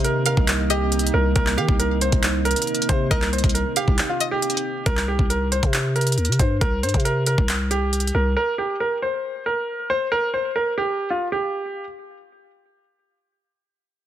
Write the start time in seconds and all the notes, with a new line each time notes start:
Already playing: C3 A#3 D#4 D#5
0.04 A#4, closed hi-hat
0.26 A#4 F5, closed hi-hat
0.37 C2, kick
0.48 clap, closed hi-hat
0.70 G4 D#5, closed hi-hat
0.92 closed hi-hat
0.99 closed hi-hat
1.07 closed hi-hat
1.14 C2 A#4
1.36 C2 A#4, kick, closed hi-hat
1.47 clap
1.58 D#3 G4 F5
1.69 C2, kick
1.79 A#4, closed hi-hat
2.01 C5, closed hi-hat
2.12 C2, kick, closed hi-hat
2.23 clap, closed hi-hat
2.45 A#4, closed hi-hat
2.51 closed hi-hat
2.56 closed hi-hat
2.62 closed hi-hat
2.67 closed hi-hat
2.75 closed hi-hat
2.82 closed hi-hat
2.89 C3 C5, kick, closed hi-hat
3.11 C2 C4 A#4 D#5, kick, closed hi-hat
3.22 clap
3.33 C5, closed hi-hat
3.38 closed hi-hat
3.44 C2, kick, closed hi-hat
3.49 closed hi-hat
3.54 A#4, closed hi-hat
3.76 G4 F5, closed hi-hat
3.88 C2, kick
3.98 clap, closed hi-hat
4.09 F4
4.20 D#5, closed hi-hat
4.31 G4
4.42 closed hi-hat
4.50 closed hi-hat
4.57 closed hi-hat
4.86 C2 A#4, kick, closed hi-hat
4.97 clap
5.08 G4
5.19 C2, kick
5.30 A#4, closed hi-hat
5.52 C5, closed hi-hat
5.63 C3, kick, closed hi-hat
5.73 clap, closed hi-hat
5.96 A#4, closed hi-hat
6.01 closed hi-hat
6.07 closed hi-hat
6.12 closed hi-hat
6.18 D#2, closed hi-hat
6.25 C3, closed hi-hat
6.32 closed hi-hat
6.39 G2 C5, kick, closed hi-hat
6.61 C2 A#4, kick, closed hi-hat
6.83 G2 C5, closed hi-hat
6.89 closed hi-hat
6.94 C3, kick, closed hi-hat
7.00 closed hi-hat
7.05 A#4, closed hi-hat
7.26 A#4, closed hi-hat
7.38 C2, kick
7.48 clap, closed hi-hat
7.71 G4, closed hi-hat
7.93 closed hi-hat
8.00 closed hi-hat
8.07 closed hi-hat
8.15 C2 A#4
8.37 A#4
8.58 G4
8.80 A#4
9.02 C5
9.46 A#4
9.90 C5
10.12 A#4
10.34 C5
10.56 A#4
10.78 G4
11.10 F4
11.32 G4